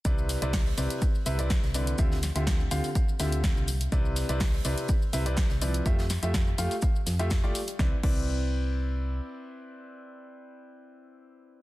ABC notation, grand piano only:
X:1
M:4/4
L:1/16
Q:1/4=124
K:C
V:1 name="Grand piano"
[C,CEBd]3 [C,CEBd] z2 [C,CEBd]2 z2 [C,CEBe] [C,CEBd] z2 [D,CEBd]2 | [D,CFGe] z2 [D,CFGe]2 z [D,CFGf] z3 [D,CFGe]4 z2 | [C,CEBd]3 [C,CEBd] z2 [C,CEBd]2 z2 [C,CEBe] [C,CEBd] z2 [F,CEBd]2 | [A,FGe] z2 [A,FGe]2 z [A,FGf] z4 [A,FGe] z [A,FGd] z2 |
[CEBd] z [CEBd]12- [CEBd]2- | [CEBd]16 |]